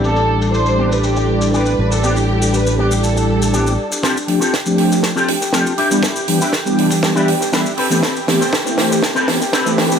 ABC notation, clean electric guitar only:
X:1
M:4/4
L:1/16
Q:1/4=120
K:Am
V:1 name="Clean electric guitar"
[B,CG] z4 z [B,CG] z4 z [B,CG]2 z2 | [B,CG] z4 z [B,CG] z4 z [B,CG]2 z2 | [CFGA] z2 [CFGA] z4 z [CFGA] z2 [CFGA]2 [DEG]2- | [DEG] z2 [DEG] z4 z [DEG] z2 [DEG]2 [CGAB]2- |
[CGAB] z2 [CGAc] z4 z [CGAB] z2 [CGAB]2 z2 |]